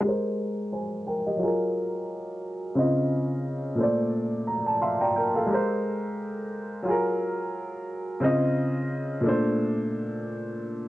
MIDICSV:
0, 0, Header, 1, 2, 480
1, 0, Start_track
1, 0, Key_signature, -4, "major"
1, 0, Tempo, 681818
1, 23, Time_signature, 4, 2, 24, 8
1, 7660, End_track
2, 0, Start_track
2, 0, Title_t, "Upright piano"
2, 0, Program_c, 0, 0
2, 2, Note_on_c, 0, 56, 63
2, 22, Note_on_c, 0, 67, 62
2, 40, Note_on_c, 0, 70, 62
2, 58, Note_on_c, 0, 72, 77
2, 143, Control_c, 0, 64, 127
2, 493, Note_off_c, 0, 67, 0
2, 502, Note_off_c, 0, 70, 0
2, 503, Note_off_c, 0, 72, 0
2, 510, Note_on_c, 0, 80, 55
2, 514, Note_on_c, 0, 72, 47
2, 735, Note_off_c, 0, 80, 0
2, 737, Note_off_c, 0, 72, 0
2, 753, Note_on_c, 0, 79, 59
2, 757, Note_on_c, 0, 70, 51
2, 878, Note_off_c, 0, 79, 0
2, 880, Note_off_c, 0, 70, 0
2, 891, Note_on_c, 0, 75, 55
2, 894, Note_on_c, 0, 67, 48
2, 953, Note_off_c, 0, 56, 0
2, 965, Note_on_c, 0, 54, 62
2, 984, Note_on_c, 0, 65, 55
2, 994, Control_c, 0, 64, 0
2, 1001, Note_on_c, 0, 68, 57
2, 1018, Note_on_c, 0, 70, 69
2, 1106, Control_c, 0, 64, 127
2, 1113, Note_off_c, 0, 75, 0
2, 1115, Note_off_c, 0, 67, 0
2, 1915, Note_off_c, 0, 54, 0
2, 1924, Note_off_c, 0, 65, 0
2, 1933, Note_off_c, 0, 68, 0
2, 1936, Note_on_c, 0, 49, 68
2, 1942, Note_off_c, 0, 70, 0
2, 1943, Note_on_c, 0, 60, 60
2, 1953, Control_c, 0, 64, 0
2, 1953, Note_on_c, 0, 65, 62
2, 1962, Note_on_c, 0, 75, 74
2, 2060, Control_c, 0, 64, 127
2, 2642, Note_on_c, 0, 46, 66
2, 2660, Note_off_c, 0, 49, 0
2, 2661, Note_on_c, 0, 57, 57
2, 2663, Note_off_c, 0, 60, 0
2, 2668, Note_off_c, 0, 65, 0
2, 2671, Control_c, 0, 64, 0
2, 2673, Note_off_c, 0, 75, 0
2, 2678, Note_on_c, 0, 72, 57
2, 2695, Note_on_c, 0, 74, 70
2, 2774, Control_c, 0, 64, 127
2, 3149, Note_on_c, 0, 82, 63
2, 3273, Note_off_c, 0, 82, 0
2, 3284, Note_on_c, 0, 81, 61
2, 3377, Note_off_c, 0, 72, 0
2, 3378, Note_off_c, 0, 81, 0
2, 3385, Note_off_c, 0, 74, 0
2, 3391, Note_on_c, 0, 84, 57
2, 3392, Note_on_c, 0, 77, 63
2, 3397, Note_on_c, 0, 76, 48
2, 3514, Note_off_c, 0, 77, 0
2, 3517, Note_off_c, 0, 84, 0
2, 3520, Note_off_c, 0, 76, 0
2, 3527, Note_on_c, 0, 79, 62
2, 3527, Note_on_c, 0, 82, 63
2, 3533, Note_on_c, 0, 74, 52
2, 3622, Note_off_c, 0, 82, 0
2, 3623, Note_off_c, 0, 79, 0
2, 3625, Note_off_c, 0, 74, 0
2, 3633, Note_on_c, 0, 79, 66
2, 3637, Note_on_c, 0, 70, 54
2, 3758, Note_off_c, 0, 79, 0
2, 3760, Note_off_c, 0, 70, 0
2, 3769, Note_on_c, 0, 77, 57
2, 3774, Note_on_c, 0, 69, 48
2, 3828, Note_off_c, 0, 46, 0
2, 3838, Note_off_c, 0, 57, 0
2, 3846, Note_on_c, 0, 56, 64
2, 3864, Note_on_c, 0, 67, 65
2, 3874, Control_c, 0, 64, 0
2, 3882, Note_on_c, 0, 70, 59
2, 3901, Note_on_c, 0, 72, 73
2, 3992, Note_off_c, 0, 77, 0
2, 3995, Note_off_c, 0, 69, 0
2, 4016, Control_c, 0, 64, 127
2, 4795, Note_off_c, 0, 56, 0
2, 4805, Note_off_c, 0, 67, 0
2, 4805, Note_on_c, 0, 54, 67
2, 4814, Note_off_c, 0, 70, 0
2, 4823, Note_off_c, 0, 72, 0
2, 4823, Note_on_c, 0, 65, 58
2, 4832, Control_c, 0, 64, 0
2, 4841, Note_on_c, 0, 68, 61
2, 4858, Note_on_c, 0, 70, 69
2, 4944, Control_c, 0, 64, 127
2, 5755, Note_off_c, 0, 54, 0
2, 5764, Note_off_c, 0, 65, 0
2, 5773, Note_off_c, 0, 68, 0
2, 5773, Note_on_c, 0, 49, 69
2, 5781, Note_on_c, 0, 60, 66
2, 5782, Note_off_c, 0, 70, 0
2, 5792, Note_on_c, 0, 65, 62
2, 5793, Control_c, 0, 64, 0
2, 5801, Note_on_c, 0, 75, 76
2, 5922, Control_c, 0, 64, 127
2, 6481, Note_on_c, 0, 46, 65
2, 6498, Note_off_c, 0, 49, 0
2, 6500, Note_on_c, 0, 57, 62
2, 6502, Note_off_c, 0, 60, 0
2, 6507, Note_off_c, 0, 65, 0
2, 6512, Note_off_c, 0, 75, 0
2, 6513, Control_c, 0, 64, 0
2, 6519, Note_on_c, 0, 62, 60
2, 6537, Note_on_c, 0, 72, 72
2, 6621, Control_c, 0, 64, 127
2, 7660, Note_off_c, 0, 46, 0
2, 7660, Note_off_c, 0, 57, 0
2, 7660, Note_off_c, 0, 62, 0
2, 7660, Note_off_c, 0, 72, 0
2, 7660, End_track
0, 0, End_of_file